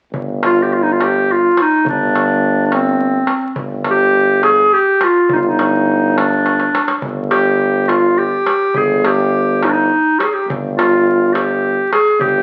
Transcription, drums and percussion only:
0.14 darbuka dum
0.43 darbuka tek
0.72 darbuka ka
1.01 darbuka tek
1.29 darbuka ka
1.57 darbuka tek
1.86 darbuka dum
2.15 darbuka tek
2.44 darbuka ka
2.72 darbuka tek
3.00 darbuka ka
3.27 darbuka tek
3.56 darbuka dum
3.84 darbuka tek
4.13 darbuka ka
4.43 darbuka tek
4.73 darbuka ka
5.01 darbuka tek
5.29 darbuka dum
5.59 darbuka tek
5.87 darbuka ka
6.18 darbuka tek
6.46 darbuka tek
6.60 darbuka ka
6.75 darbuka tek
6.88 darbuka ka
7.02 darbuka dum
7.31 darbuka tek
7.60 darbuka ka
7.89 darbuka tek
8.18 darbuka ka
8.46 darbuka tek
8.74 darbuka dum
9.05 darbuka tek
9.34 darbuka ka
9.63 darbuka tek
9.91 darbuka ka
10.20 darbuka tek
10.50 darbuka dum
10.79 darbuka tek
11.08 darbuka ka
11.35 darbuka tek
11.65 darbuka ka
11.93 darbuka tek
12.21 darbuka dum

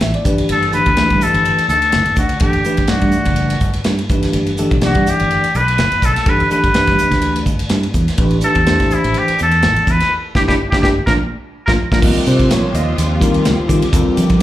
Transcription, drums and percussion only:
0.01 snare, ride
0.14 ride
0.25 kick, hi-hat pedal
0.38 ride
0.49 ride
0.62 ride
0.72 hi-hat pedal
0.86 kick, ride
0.97 snare, ride
1.10 kick, ride
1.21 hi-hat pedal
1.34 ride
1.45 ride
1.58 ride
1.69 hi-hat pedal
1.82 ride
1.92 snare, ride
2.06 ride
2.16 kick, hi-hat pedal
2.29 ride
2.40 kick, ride
2.53 ride
2.64 hi-hat pedal
2.77 kick, ride
2.87 snare, ride
3.01 kick, ride
3.11 hi-hat pedal
3.25 kick, ride
3.36 ride
3.50 ride
3.60 kick, hi-hat pedal
3.73 ride
3.84 snare, ride
3.99 ride
4.09 kick, hi-hat pedal
4.23 snare, ride
4.33 ride
4.46 ride
4.57 hi-hat pedal
4.71 kick, ride
4.81 snare, ride
4.95 kick, ride
5.06 hi-hat pedal
5.20 ride
5.31 ride
5.44 ride
5.54 hi-hat pedal
5.68 ride
5.78 snare, ride
5.92 ride
6.02 kick, hi-hat pedal
6.16 snare, ride
6.26 kick, ride
6.40 ride
6.50 hi-hat pedal
6.64 kick, ride
6.74 snare, ride
6.87 kick, snare, ride
6.98 hi-hat pedal
7.12 kick, snare, ride
7.22 ride
7.36 ride
7.46 kick, hi-hat pedal
7.59 ride
7.69 snare, ride
7.83 ride
7.94 kick, hi-hat pedal
8.08 snare, ride
8.18 kick, ride
8.31 ride
8.41 hi-hat pedal
8.55 kick, ride
8.67 snare, ride
8.80 kick, snare, ride
8.90 hi-hat pedal
9.04 ride
9.14 ride
9.28 ride
9.38 hi-hat pedal
9.51 ride
9.62 snare, ride
9.76 ride
9.87 kick, hi-hat pedal
10.00 snare, ride
10.35 kick, snare
10.49 kick, snare
10.72 kick, snare
10.83 kick, snare
11.07 kick, snare
11.68 kick, snare
11.92 kick, snare
12.02 kick, crash
12.26 hi-hat pedal, ride
12.39 kick, ride
12.51 snare, hi-hat pedal, ride
12.74 hi-hat pedal, ride
12.98 hi-hat pedal, ride
13.21 kick, hi-hat pedal, ride
13.34 ride
13.45 snare, hi-hat pedal, ride
13.69 kick, hi-hat pedal, ride
13.82 ride
13.93 kick, hi-hat pedal, ride
14.17 hi-hat pedal, ride
14.29 kick, ride

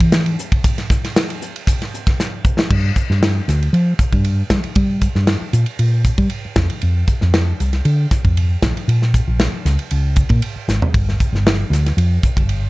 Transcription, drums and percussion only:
0.00 kick, ride
0.12 snare, hi-hat pedal, ride
0.26 ride
0.39 hi-hat pedal
0.52 kick, ride
0.64 kick, hi-hat pedal, ride
0.78 snare, ride
0.90 kick, snare, hi-hat pedal
1.05 snare, ride
1.16 snare, hi-hat pedal, ride
1.30 ride
1.42 hi-hat pedal
1.56 ride
1.67 kick, hi-hat pedal, ride
1.82 snare, ride
1.94 hi-hat pedal
2.07 kick, snare, ride
2.20 snare, hi-hat pedal
2.45 kick, hi-hat pedal
2.59 snare
2.71 kick, crash
2.96 kick, hi-hat pedal, ride
3.11 snare
3.23 snare, ride
3.49 snare, hi-hat pedal, ride
3.63 ride
3.74 ride
3.99 kick, hi-hat pedal, ride
4.12 kick, ride
4.25 ride
4.50 kick, snare, hi-hat pedal, ride
4.64 ride
4.75 kick, ride
5.01 kick, hi-hat pedal, ride
5.15 snare
5.27 snare, ride
5.53 hi-hat pedal, ride
5.66 ride
5.79 ride
6.05 kick, hi-hat pedal, ride
6.18 kick, ride
6.30 ride
6.56 kick, snare, hi-hat pedal, ride
6.70 ride
6.82 ride
7.08 kick, hi-hat pedal, ride
7.21 snare
7.34 snare, ride
7.60 hi-hat pedal, ride
7.73 snare, ride
7.85 ride
8.11 kick, snare, hi-hat pedal, ride
8.25 kick, ride
8.37 ride
8.62 kick, snare, hi-hat pedal, ride
8.77 ride
8.89 ride
9.02 snare
9.14 kick, hi-hat pedal, ride
9.40 snare, ride
9.66 snare, hi-hat pedal, ride
9.79 ride
9.91 ride
10.16 kick, hi-hat pedal, ride
10.29 kick, ride
10.42 ride
10.69 snare, hi-hat pedal
10.82 floor tom
10.94 kick, ride
11.09 snare
11.20 kick, hi-hat pedal, ride
11.35 snare
11.47 snare, ride
11.73 snare, hi-hat pedal, ride
11.86 snare, ride
11.98 ride
12.23 kick, hi-hat pedal, ride
12.37 kick, ride
12.49 ride

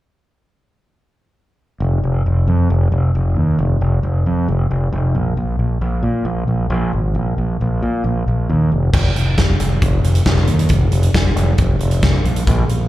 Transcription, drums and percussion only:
8.94 kick, crash
9.16 closed hi-hat
9.38 kick, snare, closed hi-hat
9.60 closed hi-hat
9.82 kick, closed hi-hat
10.04 closed hi-hat
10.15 closed hi-hat
10.25 kick, snare, closed hi-hat
10.37 snare
10.47 closed hi-hat
10.59 closed hi-hat
10.69 kick, closed hi-hat
10.92 closed hi-hat
11.03 closed hi-hat
11.14 kick, snare, closed hi-hat
11.37 closed hi-hat
11.58 kick, closed hi-hat
11.80 closed hi-hat
11.91 closed hi-hat
12.02 kick, snare, closed hi-hat
12.25 closed hi-hat
12.36 closed hi-hat
12.47 kick, closed hi-hat
12.69 closed hi-hat

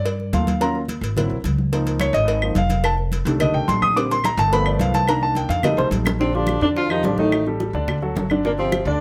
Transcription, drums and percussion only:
0.05 cowbell, high conga
0.20 high conga
0.33 cowbell, high conga
0.47 cowbell, high conga
0.61 cowbell
0.75 high conga
0.88 cowbell, high conga
1.03 cowbell, high conga
1.17 cowbell, high conga, low conga
1.31 high conga
1.44 cowbell, high conga
1.58 high conga
1.73 cowbell
1.86 cowbell, high conga
2.00 cowbell, high conga, claves
2.14 cowbell, high conga
2.27 cowbell, high conga
2.42 high conga, claves
2.55 cowbell, high conga
2.70 cowbell, high conga
2.84 cowbell, claves
2.98 high conga
3.12 cowbell, high conga
3.26 cowbell, high conga
3.40 cowbell, high conga, low conga, claves
3.54 high conga
3.68 cowbell, high conga
3.82 high conga, claves
3.96 cowbell, high conga
4.11 cowbell, high conga
4.24 cowbell, high conga, claves
4.39 cowbell, high conga
4.52 cowbell, high conga
4.66 high conga, claves
4.80 cowbell, high conga
4.94 cowbell, high conga
5.08 cowbell, high conga, claves
5.21 high conga
5.35 cowbell, high conga
5.49 cowbell, high conga
5.63 cowbell, high bongo, high conga, low conga, claves
5.77 low bongo, high conga
5.91 cowbell, high conga
6.05 low bongo, high conga, claves
6.19 high bongo, high conga
6.33 high bongo, high conga
6.47 high bongo, high conga, claves
6.61 high bongo, high conga
6.76 high bongo, high conga
6.89 high conga, claves
7.04 high bongo, low bongo, high conga
7.18 high bongo, high conga
7.32 high bongo, high conga, claves
7.46 high bongo, high conga
7.60 high bongo, high conga
7.74 high bongo, high conga
7.88 high bongo, high conga, low conga, claves
8.02 high conga
8.16 high bongo, low bongo, high conga
8.30 high bongo, high conga, claves
8.45 high bongo, high conga
8.58 high bongo, high conga
8.72 high bongo, high conga, claves
8.86 high bongo, high conga

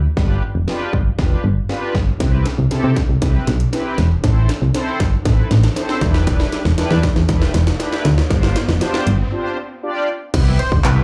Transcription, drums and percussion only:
0.17 kick, snare
0.68 snare
0.93 kick
1.19 kick, snare
1.69 snare
1.95 kick, snare
2.20 kick, snare, closed hi-hat
2.46 snare, closed hi-hat
2.71 snare, closed hi-hat
2.96 kick, snare, closed hi-hat
3.22 kick, snare, closed hi-hat
3.47 snare, closed hi-hat
3.60 closed hi-hat
3.73 snare, closed hi-hat
3.98 snare, closed hi-hat
4.24 kick, snare, closed hi-hat
4.49 snare, closed hi-hat
4.75 snare, closed hi-hat
5.00 kick, snare, closed hi-hat
5.25 kick, snare, closed hi-hat
5.51 snare, closed hi-hat
5.64 snare, closed hi-hat
5.76 snare, closed hi-hat
5.89 snare
6.01 kick, snare, closed hi-hat
6.14 snare
6.27 kick, snare, closed hi-hat
6.40 snare
6.52 snare, closed hi-hat
6.65 snare
6.78 snare, closed hi-hat
6.91 snare
7.03 kick, snare, closed hi-hat
7.16 snare
7.29 kick, snare, closed hi-hat
7.42 snare
7.54 snare, closed hi-hat
7.67 snare, closed hi-hat
7.80 snare, closed hi-hat
7.92 snare
8.05 snare, closed hi-hat
8.18 snare
8.30 kick, snare, closed hi-hat
8.43 snare
8.56 snare, closed hi-hat
8.69 snare
8.81 snare, closed hi-hat
8.94 snare
9.07 closed hi-hat
10.34 kick, closed hi-hat, crash
10.59 closed hi-hat
10.72 kick
10.84 clap, closed hi-hat

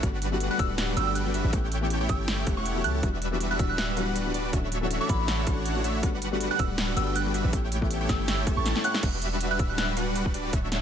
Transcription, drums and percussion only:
0.03 kick, closed hi-hat
0.22 closed hi-hat
0.40 closed hi-hat
0.59 kick, closed hi-hat
0.78 snare, closed hi-hat
0.97 closed hi-hat
1.15 closed hi-hat
1.34 closed hi-hat
1.53 kick, closed hi-hat
1.72 closed hi-hat
1.90 closed hi-hat
2.09 kick, closed hi-hat
2.28 snare, closed hi-hat
2.47 kick, closed hi-hat
2.66 closed hi-hat
2.84 closed hi-hat
3.03 kick, closed hi-hat
3.22 closed hi-hat
3.41 closed hi-hat
3.59 kick, closed hi-hat
3.78 snare, closed hi-hat
3.97 closed hi-hat
4.16 closed hi-hat
4.34 closed hi-hat
4.53 kick, closed hi-hat
4.72 closed hi-hat
4.91 closed hi-hat
5.09 kick, closed hi-hat
5.28 snare, closed hi-hat
5.47 kick, closed hi-hat
5.66 closed hi-hat
5.84 closed hi-hat
6.03 kick, closed hi-hat
6.22 closed hi-hat
6.41 closed hi-hat
6.59 kick, closed hi-hat
6.78 snare, closed hi-hat
6.97 closed hi-hat
7.16 closed hi-hat
7.34 closed hi-hat
7.53 kick, closed hi-hat
7.72 closed hi-hat
7.82 kick
7.91 closed hi-hat
8.09 kick, snare, closed hi-hat
8.28 snare, closed hi-hat
8.47 kick, closed hi-hat
8.66 snare, closed hi-hat
8.76 snare
8.84 closed hi-hat
8.94 snare
9.03 kick, closed hi-hat, crash
9.22 closed hi-hat
9.41 closed hi-hat
9.59 kick, closed hi-hat
9.78 snare, closed hi-hat
9.97 closed hi-hat
10.15 closed hi-hat
10.26 kick
10.34 closed hi-hat
10.53 kick, closed hi-hat
10.72 snare, closed hi-hat

